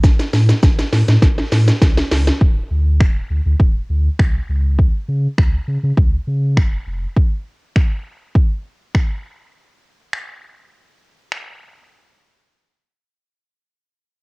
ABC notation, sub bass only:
X:1
M:4/4
L:1/16
Q:1/4=101
K:C#phr
V:1 name="Sub bass" clef=bass
A,,,2 A,,2 A,,,2 A,, A,, A,,,2 A,,2 ^B,,,2 C,,2 | D,,,2 D,,2 D,,,2 D,, D,, D,,,2 D,,2 =C,,2 ^C,,2- | C,,2 C,2 C,,2 C, C, C,,2 C,2 E,,,2 ^E,,,2 | z16 |
z16 | z16 |]